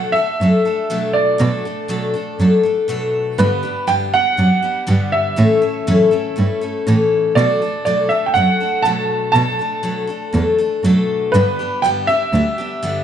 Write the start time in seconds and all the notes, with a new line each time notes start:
Already playing: B2 F#3 A3 D4 A4
0.12 A4 E5
0.17 A3 D4
0.41 F#2 F#3 A3 D4 A4
0.65 A3 D4 A4
0.90 B2 F#3 A3 D4 A4
1.13 D5
1.38 B2 F#3 A3 D4 A4
1.65 A3 D4 A4
1.88 B2 F#3 A3 D4 A4
2.14 A3 D4 A4
2.39 F#2 F#3 A3 D4 A4
2.63 A3 D4 A4
2.88 B2 F#3 A3 D4 A4
3.38 G2 D3 G3 B3 D4 G4 B4
3.63 G3 B3 D4 G4
3.87 G2 D3 G3 B3 D4 G4 G5
4.13 G3 B3 D4 G4 F#5
4.37 F#2 G3 B3 D4 G4
4.62 G3 B3 D4 G4
4.87 G2 D3 G3 B3 D4 G4
5.12 E5
5.36 A2 E3 A3 C#4 E4 A4
5.62 A3 C#4 E4 A4
5.87 F#2 A2 E3 A3 C#4 E4 A4
6.11 A3 C#4 E4 A4
6.36 G2 A3 C#4 E4 A4
6.61 A3 C#4 E4 A4
6.87 A2 E3 A3 C#4 E4 A4
7.35 B2 F#3 A3 D4 A4 D5
7.62 A3 D4 A4
7.85 B2 F#3 A3 D4 A4 D5
8.09 A3 D4 A4 E5
8.26 G5
8.34 F#2 F#3 A3 D4 A4 F#5
8.60 A3 D4 A4
8.83 B2 F#3 A3 D4 A4 A5
9.32 B2 F#3 A3 A5
9.36 D4 A4
9.59 A3 D4 A4
9.83 B2 F#3 A3 D4 A4
10.07 A3 D4 A4
10.33 E2 F#3 A3 D4 A4
10.58 A3 D4 A4
10.84 F#2 B2 F#3 A3 D4 A4
11.32 G2 D3 G3 B3 D4 G4 B4
11.59 G3 B3 D4 G4
11.82 G2 D3 G3 B3 D4 G4 G5
12.07 B3 D4 G4 E5
12.12 G3
12.33 D2 G3 B3 D4 G4
12.58 G3 B3 D4 G4
12.82 G2 D3 G3 B3 D4 G4